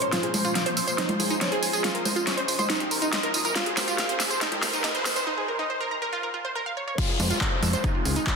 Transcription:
0.02 synth arpeggio sound C#5, closed hi-hat
0.12 synth arpeggio sound F4, snare, closed hi-hat, tambourine, riser
0.23 synth arpeggio sound G#4, closed hi-hat
0.34 synth arpeggio sound C5, open hi-hat, tambourine, high conga
0.45 synth arpeggio sound F4, closed hi-hat, tambourine
0.55 synth arpeggio sound F5, snare, closed hi-hat, tambourine
0.66 synth arpeggio sound C5, closed hi-hat
0.77 synth arpeggio sound E6, open hi-hat, tambourine
0.87 synth arpeggio sound C5, closed hi-hat, tambourine
0.98 synth arpeggio sound D#4, snare, closed hi-hat, tambourine
1.09 synth arpeggio sound F4, closed hi-hat, high conga
1.20 synth arpeggio sound G#4, open hi-hat, tambourine, high conga
1.30 synth arpeggio sound D#4, closed hi-hat, tambourine
1.41 synth arpeggio sound C#5, snare, closed hi-hat, tambourine
1.52 synth arpeggio sound G#4, closed hi-hat
1.63 synth arpeggio sound G#5, open hi-hat, tambourine
1.73 synth arpeggio sound G#4, closed hi-hat, tambourine
1.84 synth arpeggio sound F4, snare, closed hi-hat, tambourine
1.95 synth arpeggio sound A#4, closed hi-hat
2.05 synth arpeggio sound C5, open hi-hat, tambourine, high conga
2.16 synth arpeggio sound F4, closed hi-hat, tambourine
2.27 synth arpeggio sound C#5, snare, closed hi-hat, tambourine
2.37 synth arpeggio sound C5, closed hi-hat
2.48 synth arpeggio sound C6, open hi-hat, tambourine
2.59 synth arpeggio sound C5, closed hi-hat, tambourine, high conga
2.70 synth arpeggio sound D#4, snare, closed hi-hat, tambourine
2.80 synth arpeggio sound G4, closed hi-hat
2.91 synth arpeggio sound A#4, open hi-hat, tambourine
3.02 synth arpeggio sound D#4, closed hi-hat, tambourine
3.13 synth arpeggio sound D#5, snare, closed hi-hat, tambourine
3.23 synth arpeggio sound A#4, closed hi-hat
3.34 synth arpeggio sound D#6, open hi-hat, tambourine
3.45 synth arpeggio sound A#4, closed hi-hat, tambourine
3.55 synth arpeggio sound F4, snare, closed hi-hat, tambourine
3.66 synth arpeggio sound G#4, closed hi-hat
3.77 synth arpeggio sound C5, snare, open hi-hat, tambourine, high conga
3.88 synth arpeggio sound F4, closed hi-hat, tambourine
3.98 synth arpeggio sound F5, snare, closed hi-hat, tambourine
4.09 synth arpeggio sound C5, closed hi-hat
4.20 synth arpeggio sound E6, snare, open hi-hat, tambourine
4.30 synth arpeggio sound C5, closed hi-hat, tambourine
4.41 synth arpeggio sound D#4, snare, closed hi-hat, tambourine
4.52 synth arpeggio sound G4, closed hi-hat, high conga
4.63 synth arpeggio sound C5, snare, open hi-hat, tambourine, high conga
4.73 synth arpeggio sound D#4, closed hi-hat, tambourine
4.84 synth arpeggio sound D#5, snare, closed hi-hat, tambourine
4.95 synth arpeggio sound C5, closed hi-hat
5.05 synth arpeggio sound D#6, snare, open hi-hat, tambourine
5.16 synth arpeggio sound C5, closed hi-hat, tambourine
5.27 synth arpeggio sound D#4
5.38 synth arpeggio sound G#4
5.48 synth arpeggio sound A#4
5.59 synth arpeggio sound D#4
5.70 synth arpeggio sound C5
5.80 synth arpeggio sound A#4
5.91 synth arpeggio sound A#5
6.02 synth arpeggio sound A#4
6.13 synth arpeggio sound F4
6.23 synth arpeggio sound A#4
6.34 synth arpeggio sound F4
6.45 synth arpeggio sound C5
6.55 synth arpeggio sound A#4
6.66 synth arpeggio sound F5
6.77 synth arpeggio sound C#5
6.88 synth arpeggio sound C#5
6.98 ambient pad G#3 F4, synth arpeggio sound F4, kick, closed hi-hat, crash, tambourine, downlifter
7.09 synth arpeggio sound G#4
7.20 analog synth bass F2, synth arpeggio sound C5, open hi-hat, tambourine, high conga
7.30 synth arpeggio sound F4, closed hi-hat, tambourine
7.41 synth arpeggio sound F5, kick, clap, closed hi-hat, tambourine
7.52 synth arpeggio sound C5
7.63 analog synth bass F2, synth arpeggio sound E6, open hi-hat, tambourine, high conga
7.73 synth arpeggio sound C5, closed hi-hat, tambourine
7.84 ambient pad C#3, synth arpeggio sound D#4, kick, closed hi-hat, tambourine
7.95 synth arpeggio sound F4
8.05 analog synth bass C#2, synth arpeggio sound G#4, open hi-hat, tambourine
8.16 synth arpeggio sound D#4, closed hi-hat, tambourine
8.27 synth arpeggio sound C#5, kick, clap, closed hi-hat, tambourine

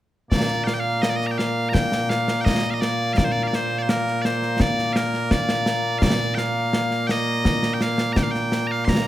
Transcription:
0.31 bagpipes A#2 A#3 D5, concert bass drum, snare
0.64 bagpipes F5 G5, snare
0.74 bagpipes G5
0.80 bagpipes F5
1.02 bagpipes D#5, snare
1.10 bagpipes D5
1.16 bagpipes D#5
1.21 snare
1.27 bagpipes A#5
1.31 bagpipes G5
1.38 bagpipes F5, snare
1.69 bagpipes A#5
1.73 bagpipes G5, concert bass drum, snare
1.92 snare
2.10 bagpipes F5, snare
2.28 snare
2.41 bagpipes D#5 G5
2.46 concert bass drum, snare
2.64 snare
2.70 bagpipes D#5 F5
2.81 bagpipes D5, snare
3.13 bagpipes D5 F5
3.18 concert bass drum, snare
3.24 bagpipes C5
3.32 bagpipes D5
3.43 bagpipes F5
3.47 bagpipes D5
3.53 bagpipes C5, snare
3.78 bagpipes C5 D5
3.89 bagpipes A#4, snare
4.07 snare
4.22 bagpipes C5 D5, snare
4.42 snare
4.60 bagpipes D5, concert bass drum, snare
4.79 snare
4.93 bagpipes A#4 F5, snare
5.14 snare
5.31 bagpipes D5, concert bass drum, snare
5.49 snare
5.66 snare
5.98 bagpipes D5 F5, concert bass drum, snare
6.35 bagpipes F5 G5, snare
6.73 snare
6.91 snare
7.07 bagpipes D#5 G5, snare
7.45 concert bass drum, snare
7.63 snare
7.74 bagpipes G5
7.81 bagpipes F5, snare
7.98 snare
8.13 bagpipes A#5, concert bass drum, snare
8.17 bagpipes G5
8.23 bagpipes F5
8.31 bagpipes G5, snare
8.52 snare
8.67 bagpipes A#5
8.71 bagpipes F5
8.85 bagpipes C6, concert bass drum, snare
8.89 bagpipes A#5

